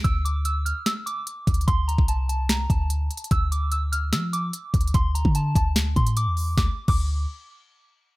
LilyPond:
<<
  \new Staff \with { instrumentName = "Synth bell" } { \time 4/4 \key d \minor \tempo 4 = 147 e'''8 d'''8 e'''8 f'''8 e'''8 d'''4. | c'''8 bes''8 a''8 a''8 bes''8 a''4. | e'''8 d'''8 e'''8 f'''8 e'''8 d'''4. | c'''8 bes''8 a''8 a''8 r8 c'''8 d'''4 |
d'''16 r8 d'''8 r2 r8. | }
  \new Staff \with { instrumentName = "808-style bass" } { \clef bass \time 4/4 \key d \minor d,4.~ d,16 r4. r16 d,8 | d,8. c,4.~ c,16 d,4 r8 | d,2 f4 r8 d,8 | d,8. d8. d,4 a,8. e,8. |
d,16 r8 d,4 r2 r16 | }
  \new DrumStaff \with { instrumentName = "Drums" } \drummode { \time 4/4 <hh bd>8 hh8 hh8 hh8 <hh sn>8 hh8 \tuplet 3/2 { hh16 r16 r16 <hh bd>16 hh16 hh16 } | <hh bd>8 hh16 bd16 hh8 hh8 <hh sn>8 <hh bd>8 \tuplet 3/2 { hh16 r16 r16 hh16 hh16 hh16 } | <hh bd>8 hh8 hh8 hh8 <hh sn>8 hh8 \tuplet 3/2 { hh16 r16 r16 <hh bd>16 hh16 hh16 } | <hh bd>8 hh16 bd16 hh8 <hh bd>8 <hh sn>8 <hh bd>16 hh16 hh8 hho8 |
<bd sn>8. <cymc bd>16 r4 r4 r4 | }
>>